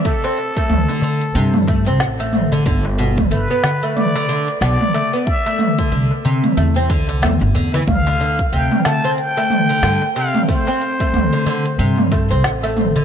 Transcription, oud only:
X:1
M:4/4
L:1/16
Q:"Swing 16ths" 1/4=92
K:Ddor
V:1 name="Oud" clef=bass
A, C z A,2 D, D, z C, z A, C z A,2 D, | D, z B,, z A, B, z A,2 D, D, z B,, z A, B, | z A,2 D, D, z C, z A, C D, D, A, z D, E, | z D, D, z C, z A, C z A,2 D, D, z C, z |
A, C z A,2 D, D, z C, z A, C z A,2 D, |]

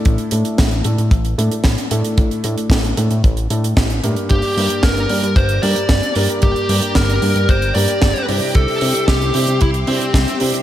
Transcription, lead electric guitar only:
X:1
M:4/4
L:1/8
Q:1/4=113
K:Gdor
V:1 name="Lead electric guitar"
z8 | z8 | G2 B2 c d2 z | G2 B2 c d2 z |
A2 G2 E C2 z |]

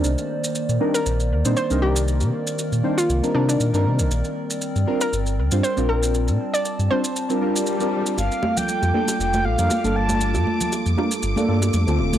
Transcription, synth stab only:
X:1
M:4/4
L:1/16
Q:"Swing 16ths" 1/4=118
K:Gm
V:1 name="Synth stab"
z6 [G,CDEB] z4 [G,CDEc] z [G,CDEB]3- | [G,CDEB]6 [G,CDEc] z2 [G,CDEB] [G,CDEB]3 [G,CDEB]3 | z6 [G,CDFB] z4 [G,CDFc] z [G,CDFB]3- | [G,CDFB]6 [G,CDFc] z2 [G,CDFB] [G,CDFB]3 [G,CDFB]3 |
z6 [G,B,DFA] z4 [G,B,DFB] z [G,B,DFA]3- | [G,B,DFA]6 [G,B,DFB] z2 [G,B,DFA] [G,B,DFA]3 [D,A,CFA]3 |]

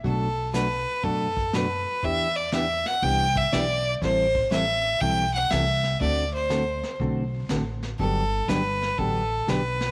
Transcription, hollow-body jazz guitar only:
X:1
M:4/4
L:1/8
Q:"Swing" 1/4=121
K:G
V:1 name="Hollow-body jazz guitar"
[B,,F,A,DF] z [B,,F,A,DF] z [B,,F,A,DF] z [B,,F,A,DF] z | [E,B,DG] z [E,B,DG] z [E,B,DG] z [E,B,DG] z | [E,G,CEA] z [E,G,CEA] z [E,G,CEA] z [E,G,CEA] z | [D,A,CFA] z [D,A,CFA] z [D,A,CFA] z [D,A,CFA] z |
[D,F,B,DG] z [D,F,B,DG] z [D,F,B,DG] z [D,F,B,DG] z |]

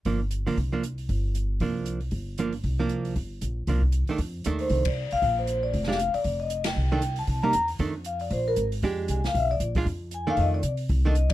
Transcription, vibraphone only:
X:1
M:4/4
L:1/8
Q:"Swing" 1/4=233
K:Fmix
V:1 name="Vibraphone"
z8 | z8 | z8 | z8 |
z3 c2 d2 f- | f c2 d2 f2 d- | d e2 g2 g2 a- | a b2 z3 f d |
c B z4 _a f | =e d z4 ^g f | e d z3 e2 d |]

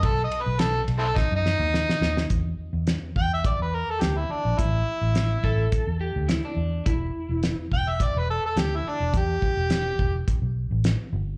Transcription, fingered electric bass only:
X:1
M:4/4
L:1/16
Q:"Swing 16ths" 1/4=105
K:Em
V:1 name="Fingered electric bass" clef=bass
B,,,2 z B,,,3 B,,,2 z F,,2 ^D,,2 z D,,2 | E,,2 z E,,2 z E,,3 E,,2 z D,,2 z ^A,,, | A,,,2 z A,,,3 A,,,2 z E,,2 D,,2 z E,,2 | E,,,2 z E,,,2 z E,,,3 E,,,2 z D,,2 z E,,, |
E,,2 z E,,,3 E,,,2 z B,,,2 A,,,2 z G,,,2 |]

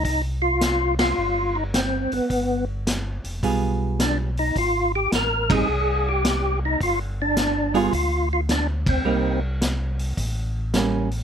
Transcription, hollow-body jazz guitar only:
X:1
M:4/4
L:1/8
Q:"Swing" 1/4=107
K:Cm
V:1 name="Hollow-body jazz guitar"
z8 | z4 [G,=B,FA]3 z | z3 [G,CE] z4 | z3 [G,=B,FA] z4 |
[G,B,E] z4 z [G,B,^C] z |]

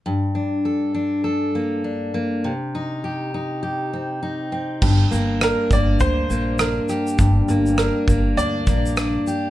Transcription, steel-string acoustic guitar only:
X:1
M:4/4
L:1/8
Q:"Swing 16ths" 1/4=101
K:Gm
V:1 name="Steel-string acoustic guitar"
G,, D A D A B, D B, | C, E G E G C E C | G,, B, D B, D B, D G | G,, B, D B, D B, D G |]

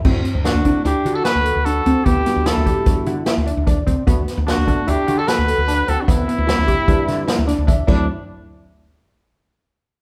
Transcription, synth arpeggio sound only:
X:1
M:5/4
L:1/8
Q:1/4=150
K:Dmix
V:1 name="Synth arpeggio sound"
C2 D D E F A2 D C | B, B, E G2 E E D D C | B,2 D D E F A2 D C | B, B, E G2 E E D D D |
z8 z2 |]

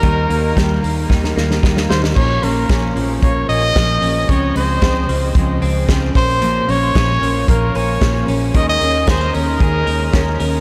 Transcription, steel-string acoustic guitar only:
X:1
M:4/4
L:1/8
Q:1/4=113
K:Bbdor
V:1 name="Steel-string acoustic guitar"
[E,G,B,E] [G,B,E] [E,G,B,E] [G,B,E] [E,G,B,E] [G,B,E] [E,G,B,E]2 | [B,,F,B,D] [F,B,D] [B,,F,B,D] [F,B,D] [B,,F,B,D]2 [B,,F,B,D] [F,B,D] | [D,F,A,C] [F,A,C] [D,F,A,C] [F,A,C] [D,F,A,C]2 [D,F,A,C] [F,B,D] | [B,,F,B,D] [F,B,D] [B,,F,B,D] [F,B,D] [B,,F,B,D]2 [B,,F,B,D] [F,B,D] |
[E,A,DAB] [DAB] [E,A,DAB] [DAB] [A,DAB]2 [E,A,DAB] [DAB] |]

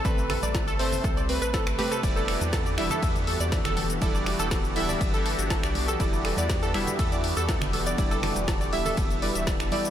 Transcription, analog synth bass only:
X:1
M:4/4
L:1/16
Q:1/4=121
K:Em
V:1 name="Analog synth bass" clef=bass
A,,,3 A,,,3 G,,,2 C,,3 A,,,2 A,,, z2 | E,,,3 E,,3 E,,, z E,,3 E,,2 E,,,3 | E,,,3 E,,,3 D,,,2 G,,,3 G,,,2 B,,,3 | E,,,3 E,,3 E,,, z E,,3 E,,2 E,,,3 |
E,,,3 E,,,3 D,,,2 E,,,3 D,,,2 E,,, z2 |]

